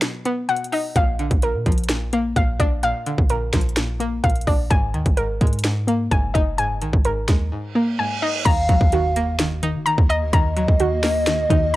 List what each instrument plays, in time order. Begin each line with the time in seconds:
Already playing: synth pluck D#3 F#3 B4 D#5 F#5
0.01 synth pluck B2, finger snap, snare, closed hi-hat
0.25 synth pluck B3, closed hi-hat
0.49 synth pluck B2 F#5, closed hi-hat
0.57 closed hi-hat
0.64 closed hi-hat
0.72 synth pluck D#4 D#5, open hi-hat
0.96 808-style bass A#1, synth pluck A#2 F5, kick, closed hi-hat
1.19 synth pluck D3, closed hi-hat
1.31 808-style bass A#1, kick, closed hi-hat
1.42 synth pluck A#2 A#4, closed hi-hat
1.54 808-style bass A#2
1.66 808-style bass A#1, synth pluck F3, kick, closed hi-hat
1.72 closed hi-hat
1.78 closed hi-hat
1.84 closed hi-hat
1.89 synth pluck A#2, finger snap, snare, closed hi-hat
2.13 synth pluck A#3, closed hi-hat
2.36 808-style bass A#1, synth pluck A#2 F5, kick, closed hi-hat
2.60 808-style bass A#1, synth pluck D4 D5, kick, closed hi-hat
2.83 synth pluck A#2 F5, closed hi-hat
3.06 synth pluck D3, closed hi-hat
3.18 808-style bass A#1, kick
3.30 synth pluck A#2 A#4, closed hi-hat
3.53 808-style bass A#1, synth pluck F3, finger snap, kick, snare, closed hi-hat
3.61 closed hi-hat
3.69 closed hi-hat
3.76 synth pluck A#2, finger snap, snare, closed hi-hat
4.00 synth pluck A#3, closed hi-hat
4.24 808-style bass A#1, synth pluck A#2 F5, kick, closed hi-hat
4.30 closed hi-hat
4.36 closed hi-hat
4.41 closed hi-hat
4.47 808-style bass A#1, synth pluck D4 D5, kick, open hi-hat
4.70 808-style bass G#1, synth pluck G#2 G#5, kick, closed hi-hat
4.94 808-style bass D#2, synth pluck D#3, closed hi-hat
5.06 808-style bass G#1, kick, closed hi-hat
5.17 synth pluck G#2 A#4, closed hi-hat
5.41 808-style bass G#2, synth pluck G#3, kick, closed hi-hat
5.47 closed hi-hat
5.53 closed hi-hat
5.59 closed hi-hat
5.64 synth pluck G#2, finger snap, snare, closed hi-hat
5.87 synth pluck A#3, closed hi-hat
6.11 808-style bass F#1, synth pluck G#2 G#5, kick, closed hi-hat
6.34 808-style bass F#1, synth pluck D#4 D#5, kick, closed hi-hat
6.58 synth pluck G#2 G#5, closed hi-hat
6.82 808-style bass A#1, synth pluck D#3, closed hi-hat
6.93 808-style bass G#1, kick
7.05 synth pluck G#2 A#4, closed hi-hat
7.28 808-style bass D#2, synth pluck G#3, finger snap, kick, snare, closed hi-hat
7.52 synth pluck G#2, reverse cymbal
7.75 synth pluck A#3
7.99 synth pluck G#2 G#5
8.22 synth pluck D#4 D#5
8.45 808-style bass D#2, synth pluck D#3 A#5, ambient pad A#3 F#4 D#5, soft synth lead F5, kick, closed hi-hat, crash, impact
8.69 808-style bass D#2, synth pluck F#3, kick, closed hi-hat
8.81 808-style bass D#2, kick
8.92 synth pluck D#3 F#4, closed hi-hat
9.16 synth pluck A#3, closed hi-hat
9.39 synth pluck D#3, finger snap, snare, closed hi-hat
9.63 synth pluck D#3 D#4, closed hi-hat
9.75 808-style bass D#3
9.86 synth pluck D#3 A#5, closed hi-hat
9.98 808-style bass D#2, kick
10.09 synth pluck D#5, closed hi-hat
10.21 808-style bass D2
10.33 808-style bass D#2, synth pluck D#3 A#5, soft synth lead D#5, kick, closed hi-hat
10.57 synth pluck F#3, closed hi-hat
10.68 808-style bass D#2, kick
10.80 synth pluck D#3 F#4, closed hi-hat
11.03 synth pluck A#3, finger snap, snare, open hi-hat
11.26 synth pluck D#3, finger snap, snare, closed hi-hat
11.50 808-style bass D#2, synth pluck D#3 D#4, kick, closed hi-hat